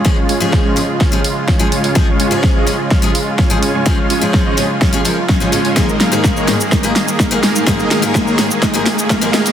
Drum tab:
HH |--o---o---o---oo|--o---o---o---o-|--o---o---o---oo|--o---o---o---o-|
SH |----------------|----------------|----------------|xx-xxx-xxx-xxx-x|
SD |o---o---o---o---|o---o---o---o---|o---o---o---o---|o-o-o-o-o-o-o-o-|
BD |o---o---o---o---|o---o---o---o---|o---o---o---o---|o---o---o---o---|

HH |--o---o---o---oo|
SH |xx-xxx-xxx-xxx-x|
SD |o-o-o-o-o-o-o-o-|
BD |o---o---o---o---|